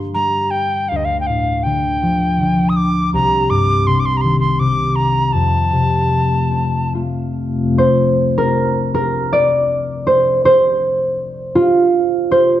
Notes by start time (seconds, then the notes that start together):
Already playing: G2 D3 G3 A#3
0.14 G3 A#5
0.51 G5
0.89 D2 F5
0.96 D#5
1.05 F5
1.20 G5
1.27 A2 F5
1.63 D3 G5
2.03 F3
2.40 D3
2.69 D#6
2.76 D6
3.14 C2 A#5
3.49 G2 D6
3.86 C3 C6
4.00 D6
4.06 C6
4.17 A#5
4.21 D#3 C6
4.40 C6
4.59 C3 D6
4.96 A#5
5.33 F2 A5
5.72 C3
6.10 A3
6.51 C4
6.93 A3 F4
7.78 C5
8.38 A#4
8.94 A#4
9.33 D5
10.07 C5
10.45 C5
11.55 F4
12.31 C5